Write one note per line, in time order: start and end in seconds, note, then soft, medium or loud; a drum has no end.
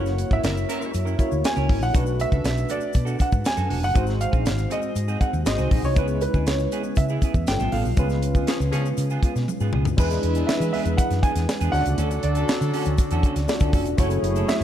0.00 0.23 F#1 loud
0.00 1.16 A#3 medium
0.00 0.14 C#4 medium
0.00 1.17 E4 medium
0.00 1.17 F#4 medium
0.00 1.18 C#5 medium
0.00 0.35 F#5 loud
0.06 muted clean electric guitar stroke soft
0.06 snare soft
0.06 shaker soft
0.18 muted clean electric guitar stroke soft
0.18 closed hi-hat medium
0.18 shaker soft
0.31 0.41 G#1 medium
0.31 0.48 C#4 soft
0.31 0.48 E4 soft
0.31 0.47 A#4 medium
0.31 1.29 E5 loud
0.31 kick medium
0.31 shaker soft
0.44 0.63 F#1 medium
0.44 0.54 F#3 medium
0.44 0.55 E4 medium
0.44 0.54 A#4 medium
0.44 snare loud
0.44 closed hi-hat medium
0.44 shaker medium
0.56 muted clean electric guitar stroke soft
0.56 shaker medium
0.68 0.90 F#3 medium
0.68 0.89 C#4 medium
0.68 0.90 E4 medium
0.68 0.81 E4 medium
0.68 0.90 A#4 medium
0.68 0.80 A#4 medium
0.68 closed hi-hat medium
0.68 shaker soft
0.81 muted clean electric guitar stroke soft
0.81 shaker soft
0.94 1.14 F#2 medium
0.94 muted clean electric guitar stroke soft
0.94 closed hi-hat medium
0.94 shaker medium
1.05 1.17 C#4 medium
1.05 1.17 E4 medium
1.05 1.18 A#4 medium
1.05 shaker soft
1.18 1.95 A#3 medium
1.18 1.34 C#4 soft
1.18 1.30 E4 medium
1.18 1.95 E4 medium
1.18 1.94 F#4 medium
1.18 1.30 A#4 medium
1.18 1.95 C#5 medium
1.18 kick medium
1.18 closed hi-hat medium
1.18 shaker soft
1.31 1.42 D2 medium
1.31 muted clean electric guitar stroke soft
1.31 shaker soft
1.44 1.80 G#5 loud
1.44 snare loud
1.44 closed hi-hat medium
1.44 shaker medium
1.56 1.66 C#2 medium
1.56 1.67 C#4 medium
1.56 1.68 E4 medium
1.56 1.68 A#4 medium
1.56 shaker soft
1.68 1.79 G#1 medium
1.68 1.85 C#4 medium
1.68 1.81 E4 medium
1.68 1.80 A#4 medium
1.68 kick medium
1.68 open hi-hat medium
1.81 1.91 A#1 medium
1.81 2.18 F#5 loud
1.81 muted clean electric guitar stroke soft
1.81 shaker soft
1.93 2.24 B1 loud
1.93 3.91 A3 medium
1.93 2.14 D4 medium
1.93 3.91 D4 medium
1.93 2.07 F#4 medium
1.93 3.92 F#4 medium
1.93 2.06 A4 medium
1.93 3.92 B4 medium
1.93 kick loud
1.93 closed hi-hat medium
1.93 shaker medium
2.06 muted clean electric guitar stroke soft
2.06 shaker soft
2.20 2.72 E5 loud
2.20 muted clean electric guitar stroke soft
2.20 closed hi-hat medium
2.20 shaker soft
2.32 2.42 C#2 medium
2.32 2.49 D4 soft
2.32 2.48 F#4 medium
2.32 2.48 A4 medium
2.32 kick medium
2.32 shaker soft
2.44 2.64 B1 medium
2.44 snare loud
2.44 closed hi-hat medium
2.44 shaker medium
2.57 muted clean electric guitar stroke soft
2.57 shaker medium
2.69 2.90 D4 medium
2.69 2.81 F#4 medium
2.69 2.80 A4 medium
2.69 3.22 D5 loud
2.69 closed hi-hat medium
2.69 shaker soft
2.81 muted clean electric guitar stroke soft
2.81 shaker soft
2.93 3.15 B2 medium
2.93 muted clean electric guitar stroke soft
2.93 kick medium
2.93 closed hi-hat medium
2.93 shaker medium
3.05 3.17 D4 medium
3.05 3.18 F#4 medium
3.05 3.18 A4 medium
3.05 shaker medium
3.18 3.35 D4 medium
3.18 3.31 F#4 medium
3.18 3.30 A4 medium
3.18 3.44 F#5 medium
3.18 kick medium
3.18 closed hi-hat medium
3.18 shaker soft
3.31 3.42 G#2 medium
3.31 muted clean electric guitar stroke soft
3.31 kick medium
3.31 shaker soft
3.44 3.85 G#5 loud
3.44 muted clean electric guitar stroke soft
3.44 snare loud
3.44 closed hi-hat medium
3.44 shaker medium
3.57 3.67 F#2 medium
3.57 3.68 D4 medium
3.57 3.69 F#4 medium
3.57 3.70 A4 medium
3.57 shaker medium
3.69 3.83 E1 medium
3.69 3.86 D4 medium
3.69 3.81 F#4 medium
3.69 3.81 A4 medium
3.69 open hi-hat medium
3.82 3.92 F#1 medium
3.82 4.22 F#5 loud
3.82 muted clean electric guitar stroke soft
3.82 shaker soft
3.94 4.25 G#1 loud
3.94 5.43 G#3 medium
3.94 4.15 C4 medium
3.94 5.43 D#4 medium
3.94 4.07 F#4 medium
3.94 5.43 F#4 medium
3.94 4.06 G#4 medium
3.94 5.44 C5 medium
3.94 kick loud
3.94 closed hi-hat medium
3.94 shaker medium
4.07 muted clean electric guitar stroke soft
4.07 snare soft
4.07 shaker soft
4.20 4.73 F5 loud
4.20 muted clean electric guitar stroke soft
4.20 closed hi-hat medium
4.20 shaker soft
4.32 4.47 A#1 medium
4.32 4.49 C4 medium
4.32 4.49 F#4 medium
4.32 4.48 G#4 medium
4.32 kick medium
4.32 shaker soft
4.45 4.65 G#1 medium
4.45 snare loud
4.45 closed hi-hat medium
4.45 shaker medium
4.58 muted clean electric guitar stroke soft
4.58 shaker medium
4.70 4.91 C4 medium
4.70 4.83 F#4 medium
4.70 4.82 G#4 loud
4.70 5.18 D#5 medium
4.70 closed hi-hat medium
4.70 shaker soft
4.82 muted clean electric guitar stroke soft
4.82 shaker soft
4.96 5.15 G#2 medium
4.96 muted clean electric guitar stroke soft
4.96 closed hi-hat medium
4.96 shaker medium
5.08 5.19 C4 medium
5.08 5.20 F#4 medium
5.08 5.20 G#4 medium
5.08 shaker soft
5.20 5.36 C4 medium
5.20 5.33 F#4 medium
5.20 5.32 G#4 medium
5.20 5.44 F#5 medium
5.20 kick medium
5.20 closed hi-hat medium
5.20 shaker soft
5.33 5.43 D#2 loud
5.33 muted clean electric guitar stroke soft
5.33 shaker soft
5.45 5.56 G#1 medium
5.45 5.95 G#3 medium
5.45 5.96 D#4 soft
5.45 5.96 F#4 medium
5.45 5.97 C5 medium
5.45 5.85 D#5 loud
5.45 snare loud
5.45 closed hi-hat loud
5.45 shaker medium
5.58 5.68 C2 medium
5.58 5.70 C4 medium
5.58 5.70 F#4 medium
5.58 5.71 G#4 medium
5.58 shaker medium
5.71 5.81 A#1 medium
5.71 5.87 C4 medium
5.71 5.84 F#4 medium
5.71 5.84 G#4 medium
5.71 kick loud
5.71 open hi-hat medium
5.83 5.97 C2 medium
5.83 6.20 C#5 loud
5.83 muted clean electric guitar stroke soft
5.83 shaker soft
5.96 6.26 C#2 loud
5.96 7.44 G#3 medium
5.96 6.17 B3 medium
5.96 7.44 C#4 medium
5.96 6.09 E4 medium
5.96 7.45 E4 medium
5.96 6.08 G#4 medium
5.96 7.45 B4 medium
5.96 kick loud
5.96 closed hi-hat medium
5.96 shaker medium
6.08 muted clean electric guitar stroke medium
6.08 shaker soft
6.21 6.45 B4 medium
6.21 muted clean electric guitar stroke soft
6.21 closed hi-hat medium
6.21 shaker soft
6.34 6.46 D2 medium
6.34 6.51 B3 medium
6.34 6.51 E4 medium
6.34 6.50 G#4 medium
6.34 kick medium
6.34 shaker soft
6.46 6.66 C#2 medium
6.46 6.94 C#5 medium
6.46 snare loud
6.46 closed hi-hat medium
6.46 shaker medium
6.59 muted clean electric guitar stroke medium
6.59 shaker soft
6.72 6.92 B3 medium
6.72 6.84 E4 medium
6.72 6.84 G#4 medium
6.72 closed hi-hat medium
6.72 shaker soft
6.83 muted clean electric guitar stroke medium
6.83 shaker soft
6.95 7.17 C#3 medium
6.95 7.49 E5 medium
6.95 muted clean electric guitar stroke soft
6.95 kick medium
6.95 closed hi-hat medium
6.95 shaker medium
7.09 7.22 B3 medium
7.09 7.22 E4 medium
7.09 7.23 G#4 medium
7.09 shaker medium
7.22 7.38 B3 medium
7.22 7.35 E4 medium
7.22 7.34 G#4 medium
7.22 kick medium
7.22 closed hi-hat medium
7.22 shaker soft
7.34 7.44 E2 loud
7.34 muted clean electric guitar stroke soft
7.34 kick medium
7.34 shaker soft
7.47 7.57 G1 loud
7.47 7.97 G3 medium
7.47 7.97 B3 medium
7.47 7.97 F4 medium
7.47 7.98 A4 medium
7.47 7.73 G5 loud
7.47 snare loud
7.47 closed hi-hat loud
7.47 shaker medium
7.60 7.70 A1 medium
7.60 7.71 B3 medium
7.60 7.72 F4 medium
7.60 7.72 A4 medium
7.60 shaker medium
7.72 7.82 A1 medium
7.72 7.88 B3 medium
7.72 7.85 F4 medium
7.72 7.84 A4 medium
7.72 9.69 F5 medium
7.72 open hi-hat medium
7.85 7.95 B1 medium
7.85 muted clean electric guitar stroke soft
7.85 shaker soft
7.97 8.35 C#2 loud
7.97 9.93 G#3 medium
7.97 8.18 B3 medium
7.97 9.94 C#4 medium
7.97 9.94 F4 medium
7.97 8.10 F4 medium
7.97 8.09 G#4 medium
7.97 9.95 B4 medium
7.97 kick loud
7.97 closed hi-hat medium
7.97 shaker medium
8.09 muted clean electric guitar stroke soft
8.09 snare soft
8.09 shaker soft
8.22 muted clean electric guitar stroke soft
8.22 closed hi-hat medium
8.22 shaker medium
8.35 8.44 D2 medium
8.35 8.51 B3 medium
8.35 8.51 F4 medium
8.35 8.51 G#4 medium
8.35 kick medium
8.35 shaker soft
8.47 8.58 F3 medium
8.47 8.58 C#4 medium
8.47 8.58 G#4 medium
8.47 snare loud
8.47 closed hi-hat medium
8.47 shaker medium
8.60 8.70 C#2 loud
8.60 muted clean electric guitar stroke medium
8.60 shaker medium
8.72 8.92 C#3 medium
8.72 8.88 F3 medium
8.72 8.93 B3 medium
8.72 8.88 C#4 medium
8.72 8.85 F4 medium
8.72 8.88 G#4 medium
8.72 8.83 G#4 medium
8.72 closed hi-hat medium
8.72 shaker soft
8.85 muted clean electric guitar stroke soft
8.85 shaker soft
8.97 9.17 C#3 medium
8.97 muted clean electric guitar stroke soft
8.97 closed hi-hat medium
8.97 shaker medium
9.10 9.22 B3 medium
9.10 9.23 F4 medium
9.10 9.23 G#4 medium
9.10 shaker soft
9.23 9.38 B3 medium
9.23 9.35 F4 medium
9.23 9.35 G#4 medium
9.23 kick medium
9.23 closed hi-hat medium
9.23 shaker soft
9.36 9.45 B2 medium
9.36 muted clean electric guitar stroke soft
9.36 snare soft
9.36 shaker soft
9.48 muted clean electric guitar stroke soft
9.48 high tom medium
9.48 shaker medium
9.60 9.70 G#2 medium
9.60 9.72 B3 medium
9.60 9.73 F4 medium
9.60 9.73 G#4 medium
9.60 shaker medium
9.73 9.86 C#2 medium
9.73 9.89 B3 medium
9.73 9.86 F4 medium
9.73 9.85 G#4 medium
9.73 mid tom medium
9.85 9.95 D2 medium
9.85 muted clean electric guitar stroke soft
9.85 floor tom medium
9.85 shaker soft
9.97 10.17 E2 loud
9.97 11.71 E3 medium
9.97 11.69 G#3 medium
9.97 11.45 G#3 medium
9.97 10.18 B3 medium
9.97 11.69 D4 medium
9.97 11.71 D4 medium
9.97 10.11 D4 medium
9.97 11.45 E4 medium
9.97 11.70 E4 medium
9.97 11.71 G#4 medium
9.97 10.10 G#4 medium
9.97 11.45 B4 medium
9.97 11.70 B4 medium
9.97 kick loud
9.97 crash loud
9.97 shaker medium
10.10 muted clean electric guitar stroke soft
10.10 snare soft
10.10 closed hi-hat medium
10.10 shaker soft
10.23 10.42 E2 medium
10.23 muted clean electric guitar stroke soft
10.23 closed hi-hat medium
10.35 10.52 B3 soft
10.35 10.52 D4 medium
10.35 10.51 G#4 medium
10.35 closed hi-hat medium
10.35 shaker soft
10.47 10.71 E5 medium
10.47 muted fretless electric bass stroke soft
10.47 snare loud
10.47 shaker medium
10.60 10.70 E3 medium
10.60 muted clean electric guitar stroke soft
10.60 closed hi-hat soft
10.60 shaker medium
10.73 10.93 B3 medium
10.73 10.87 D4 medium
10.73 10.86 G#4 medium
10.73 10.99 E5 medium
10.73 open hi-hat medium
10.86 10.95 E2 loud
10.86 muted clean electric guitar stroke soft
10.86 closed hi-hat medium
10.86 shaker soft
10.97 11.23 F#5 medium
10.97 muted clean electric guitar stroke soft
10.97 kick medium
10.97 closed hi-hat medium
10.97 shaker medium
11.10 11.20 F#2 medium
11.10 muted clean electric guitar stroke medium
11.10 snare soft
11.10 closed hi-hat medium
11.10 shaker soft
11.23 11.35 B3 medium
11.23 11.35 D4 medium
11.23 11.34 G#4 medium
11.23 11.69 G#5 medium
11.23 kick medium
11.23 closed hi-hat medium
11.35 11.45 E2 medium
11.35 11.47 B3 soft
11.35 11.47 D4 medium
11.35 11.47 G#4 medium
11.35 snare soft
11.35 closed hi-hat medium
11.35 shaker soft
11.49 snare loud
11.49 shaker medium
11.61 11.70 E2 medium
11.61 11.81 B3 medium
11.61 11.73 D4 medium
11.61 11.73 G#4 medium
11.61 closed hi-hat soft
11.61 shaker soft
11.72 11.83 D2 medium
11.72 13.96 D3 medium
11.72 13.69 F#3 medium
11.72 13.44 A3 medium
11.72 11.89 C#4 medium
11.72 13.69 D4 medium
11.72 13.44 D4 medium
11.72 13.96 D4 medium
11.72 13.96 F#4 loud
11.72 11.86 F#4 medium
11.72 13.45 F#4 medium
11.72 13.68 A4 medium
11.72 11.85 A4 medium
11.72 11.80 C5 medium
11.72 12.24 F#5 loud
11.72 open hi-hat medium
11.72 shaker soft
11.81 13.47 D5 medium
11.86 11.96 C#2 medium
11.86 muted clean electric guitar stroke soft
11.86 closed hi-hat medium
11.86 shaker soft
11.98 12.17 D2 loud
11.98 12.18 C#4 medium
11.98 12.11 F#4 medium
11.98 12.11 A4 medium
11.98 closed hi-hat medium
11.98 shaker medium
12.11 muted clean electric guitar stroke soft
12.11 closed hi-hat medium
12.11 shaker soft
12.23 12.43 D2 medium
12.23 13.69 D5 medium
12.23 muted clean electric guitar stroke soft
12.23 closed hi-hat medium
12.35 12.52 C#4 soft
12.35 12.52 F#4 soft
12.35 12.52 A4 medium
12.35 closed hi-hat medium
12.35 shaker soft
12.49 snare loud
12.49 shaker medium
12.61 12.70 D3 loud
12.61 muted clean electric guitar stroke soft
12.61 closed hi-hat soft
12.61 shaker soft
12.74 12.93 C#4 medium
12.74 12.86 F#4 medium
12.74 12.86 A4 loud
12.74 open hi-hat medium
12.85 12.96 D2 loud
12.85 muted clean electric guitar stroke medium
12.85 closed hi-hat medium
12.85 shaker medium
12.98 muted clean electric guitar stroke soft
12.98 kick medium
12.98 closed hi-hat medium
12.98 shaker medium
13.11 13.21 E2 medium
13.11 13.23 C#4 medium
13.11 13.24 F#4 medium
13.11 13.25 A4 loud
13.11 closed hi-hat medium
13.11 shaker medium
13.23 13.39 C#4 medium
13.23 13.36 F#4 medium
13.23 13.36 A4 medium
13.23 kick medium
13.23 closed hi-hat medium
13.36 13.45 D2 medium
13.36 muted clean electric guitar stroke soft
13.36 snare soft
13.36 closed hi-hat medium
13.36 shaker soft
13.47 13.96 A3 medium
13.47 13.98 D4 soft
13.47 13.54 F4 soft
13.47 13.98 D5 medium
13.47 muted clean electric guitar stroke soft
13.47 snare loud
13.47 shaker medium
13.54 13.98 F#4 soft
13.60 13.70 D2 medium
13.60 13.72 C#4 medium
13.60 13.73 F#4 medium
13.60 13.74 A4 medium
13.60 kick loud
13.60 closed hi-hat soft
13.60 shaker medium
13.73 13.86 F#1 medium
13.73 13.89 C#4 medium
13.73 13.87 F#4 medium
13.73 13.86 A4 medium
13.73 kick loud
13.73 open hi-hat medium
13.73 shaker soft
13.86 13.95 E1 loud
13.86 muted clean electric guitar stroke soft
13.86 closed hi-hat medium
13.86 shaker soft
13.97 14.17 F#1 loud
13.97 14.64 E3 medium
13.97 14.64 F#3 medium
13.97 14.64 A3 medium
13.97 14.64 A3 loud
13.97 14.64 C#4 medium
13.97 14.18 C#4 medium
13.97 14.64 E4 medium
13.97 14.11 E4 medium
13.97 14.64 F#4 medium
13.97 14.64 G#4 medium
13.97 14.10 A4 loud
13.97 14.64 C#5 medium
13.97 kick loud
13.97 closed hi-hat loud
13.97 shaker medium
14.10 muted clean electric guitar stroke soft
14.10 closed hi-hat medium
14.10 shaker soft
14.23 14.42 F#1 medium
14.23 muted clean electric guitar stroke soft
14.23 closed hi-hat medium
14.36 14.52 C#4 medium
14.36 14.52 E4 medium
14.36 14.51 A4 medium
14.36 closed hi-hat soft
14.36 shaker soft
14.48 14.64 E5 loud
14.48 snare loud
14.48 shaker medium
14.61 14.64 F#2 medium